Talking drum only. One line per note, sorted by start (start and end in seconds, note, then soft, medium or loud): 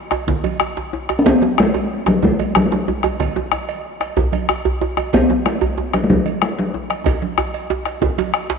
1.19 1.28 C#4 medium
1.26 1.58 B3 loud
1.60 2.04 G#3 medium
2.08 2.22 F#3 medium
2.24 2.54 G#3 medium
2.56 2.65 F#3 medium
2.66 2.74 G#3 medium
2.73 3.09 F#3 medium
5.14 5.47 B3 loud
5.46 5.95 G#3 medium
5.94 6.03 F#3 medium
6.04 6.11 G#3 medium
6.10 6.44 F#3 medium
6.42 6.61 G#3 medium
6.59 6.95 F#3 medium